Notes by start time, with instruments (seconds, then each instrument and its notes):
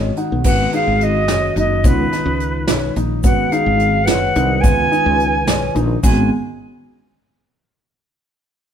Already playing: fretless electric bass G#1, tine electric piano D#3 G#3 C#4 F#4 D#5, grand piano C#4
0.17 grand piano D#4, tine electric piano F#5, closed hi-hat
0.32 fretless electric bass B1
0.44 fretless electric bass G#1, tine electric piano D#3 G#3 C#4 F#4, grand piano B3, vibraphone B4, flute F#5, kick, crash, shaker
0.73 grand piano D#4, vibraphone G#4, flute F5, closed hi-hat
0.87 fretless electric bass G#1
1.01 vibraphone F#4, flute D#5, closed hi-hat
1.28 fretless electric bass F#1, grand piano C#4, snare, closed hi-hat, shaker
1.55 fretless electric bass F#1, grand piano D#4, vibraphone F#4, flute D#5, closed hi-hat
1.83 fretless electric bass C#2, tine electric piano D#3 G#3 C#4 F4, grand piano B3, vibraphone D#4, flute B4, kick, closed hi-hat, shaker
2.12 grand piano D#4, snare, closed hi-hat
2.26 fretless electric bass C#2
2.40 closed hi-hat
2.68 fretless electric bass B1, grand piano C#4, snare, closed hi-hat, shaker
2.96 fretless electric bass A#1, grand piano D#4, closed hi-hat
3.23 fretless electric bass G#1, tine electric piano D#3 G#3 C#4 F#4, grand piano B3, vibraphone B4, flute F#5, kick, closed hi-hat, shaker
3.50 grand piano D#4, vibraphone G#4, flute F5, closed hi-hat
3.66 fretless electric bass G#1
3.79 closed hi-hat
4.04 fretless electric bass F#1, vibraphone B4, flute F#5, snare, closed hi-hat, shaker
4.08 grand piano C#4
4.35 fretless electric bass C2, grand piano D#4, closed hi-hat
4.60 fretless electric bass C#2, tine electric piano D#3 G#3, grand piano B3, vibraphone B4, flute G#5, kick, closed hi-hat, shaker
4.65 tine electric piano C#4 F4
4.92 grand piano D#4, closed hi-hat
5.06 fretless electric bass C#2
5.20 closed hi-hat
5.47 fretless electric bass B1, grand piano C#4, snare, closed hi-hat, shaker
5.75 fretless electric bass A#1, grand piano D#4, closed hi-hat, shaker
6.03 fretless electric bass G#1, tine electric piano D#3 G#3 C#4 F#4, grand piano G#3, vibraphone B3, flute G#5, kick, crash, shaker